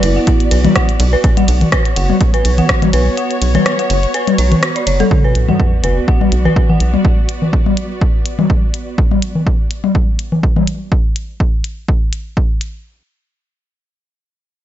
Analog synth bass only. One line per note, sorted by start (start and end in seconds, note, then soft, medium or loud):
0.03 0.19 F#1 loud
0.51 0.68 B1 medium
1.00 1.16 B1 loud
1.48 1.64 B1 loud
1.97 2.13 F#1 loud
2.45 2.61 B1 medium
2.93 3.10 B1 loud
3.42 3.58 B1 loud
3.90 4.06 F#1 loud
4.39 4.55 B1 medium
4.87 5.03 F#1 medium
5.35 5.52 B1 loud
5.84 6.00 F#1 loud
6.32 6.48 B1 medium
6.80 6.97 B1 medium